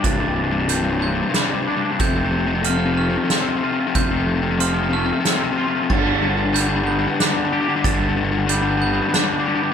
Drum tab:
CC |------|------|------|x-----|
HH |x-x-x-|x-x-x-|x-x-x-|--x-x-|
SD |----o-|----o-|----o-|----o-|
BD |o-----|o-----|o-----|o-----|

CC |------|
HH |x-x-x-|
SD |----o-|
BD |o-----|